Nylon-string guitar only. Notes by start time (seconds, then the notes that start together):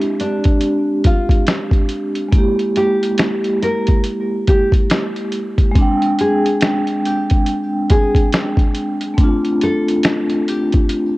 Already playing: E4
0.21 D4
1.06 F4
2.77 G4
3.63 A#4
4.49 G4
6.21 G#4
7.06 G4
7.91 G#4
9.63 A4
10.49 G4